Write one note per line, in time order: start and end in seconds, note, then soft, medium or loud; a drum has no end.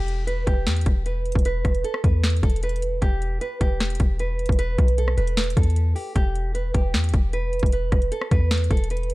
0.00 0.45 E1 loud
0.00 0.25 G4 loud
0.08 closed hi-hat medium
0.27 0.44 B4 medium
0.27 closed hi-hat medium
0.47 0.68 E1 loud
0.47 1.02 G4 medium
0.47 kick loud
0.47 closed hi-hat medium
0.67 0.85 E2 loud
0.67 snare loud
0.67 closed hi-hat soft
0.72 closed hi-hat medium
0.76 closed hi-hat medium
0.81 closed hi-hat medium
0.86 1.33 E1 loud
0.86 kick loud
0.86 closed hi-hat medium
1.06 1.43 B4 medium
1.06 closed hi-hat medium
1.26 closed hi-hat soft
1.32 1.64 E1 loud
1.32 kick loud
1.32 closed hi-hat medium
1.39 closed hi-hat medium
1.45 1.82 B4 loud
1.45 closed hi-hat medium
1.65 1.84 E1 loud
1.65 kick loud
1.65 cross-stick medium
1.65 closed hi-hat medium
1.75 closed hi-hat soft
1.84 2.01 A4 medium
1.84 closed hi-hat medium
1.94 cross-stick loud
2.04 2.42 E2 loud
2.04 2.21 B4 medium
2.04 kick loud
2.04 closed hi-hat medium
2.24 snare loud
2.24 closed hi-hat medium
2.30 closed hi-hat medium
2.37 closed hi-hat medium
2.43 3.00 E1 loud
2.43 2.60 A4 medium
2.43 kick loud
2.43 closed hi-hat medium
2.50 closed hi-hat medium
2.56 closed hi-hat medium
2.63 2.80 B4 medium
2.63 closed hi-hat medium
2.69 closed hi-hat medium
2.76 closed hi-hat soft
2.82 closed hi-hat medium
3.02 3.40 E1 loud
3.02 3.39 G4 loud
3.02 kick loud
3.02 closed hi-hat medium
3.22 closed hi-hat medium
3.41 3.58 B4 loud
3.41 closed hi-hat medium
3.61 3.98 E1 loud
3.61 4.16 G4 medium
3.61 kick loud
3.61 closed hi-hat medium
3.80 snare loud
3.80 closed hi-hat soft
3.85 closed hi-hat medium
3.90 closed hi-hat medium
3.95 closed hi-hat medium
4.00 4.47 E1 loud
4.00 kick loud
4.00 closed hi-hat medium
4.19 4.57 B4 medium
4.19 closed hi-hat medium
4.39 closed hi-hat soft
4.46 4.77 E1 loud
4.46 kick loud
4.46 closed hi-hat medium
4.52 closed hi-hat medium
4.59 4.96 B4 loud
4.59 closed hi-hat medium
4.78 5.16 B1 loud
4.78 kick loud
4.78 closed hi-hat medium
4.88 closed hi-hat medium
4.98 5.15 A4 medium
4.98 closed hi-hat medium
5.08 cross-stick medium
5.17 5.55 E1 loud
5.17 5.35 B4 medium
5.17 closed hi-hat medium
5.27 closed hi-hat medium
5.37 snare loud
5.37 closed hi-hat soft
5.44 closed hi-hat medium
5.50 closed hi-hat medium
5.57 5.94 E2 loud
5.57 5.94 A4 medium
5.57 kick loud
5.57 closed hi-hat medium
5.63 closed hi-hat medium
5.70 closed hi-hat soft
5.76 closed hi-hat medium
5.95 6.13 G4 medium
5.95 open hi-hat medium
6.15 6.72 E1 loud
6.15 6.52 G4 loud
6.15 kick loud
6.15 closed hi-hat medium
6.35 closed hi-hat medium
6.54 6.72 B4 medium
6.54 closed hi-hat medium
6.74 6.96 E1 loud
6.74 7.30 G4 medium
6.74 kick loud
6.74 closed hi-hat medium
6.94 7.13 E2 loud
6.94 snare loud
6.94 closed hi-hat soft
6.99 closed hi-hat medium
7.04 closed hi-hat medium
7.09 closed hi-hat medium
7.14 7.61 E1 loud
7.14 kick loud
7.14 closed hi-hat medium
7.33 7.70 B4 medium
7.33 closed hi-hat medium
7.53 closed hi-hat soft
7.59 7.91 E1 loud
7.59 kick loud
7.59 closed hi-hat medium
7.66 closed hi-hat medium
7.72 8.10 B4 loud
7.72 closed hi-hat medium
7.92 8.11 E1 loud
7.92 kick loud
7.92 cross-stick medium
7.92 closed hi-hat medium
8.02 closed hi-hat medium
8.12 8.29 A4 medium
8.12 closed hi-hat medium
8.21 cross-stick medium
8.31 8.69 E2 loud
8.31 8.49 B4 medium
8.31 kick loud
8.31 closed hi-hat medium
8.51 snare loud
8.51 closed hi-hat medium
8.58 closed hi-hat medium
8.64 closed hi-hat medium
8.71 9.14 E1 loud
8.71 8.88 A4 loud
8.71 kick loud
8.71 closed hi-hat medium
8.77 closed hi-hat medium
8.84 closed hi-hat medium
8.90 9.08 B4 medium
8.90 closed hi-hat medium
8.97 closed hi-hat medium
9.03 closed hi-hat soft
9.10 closed hi-hat medium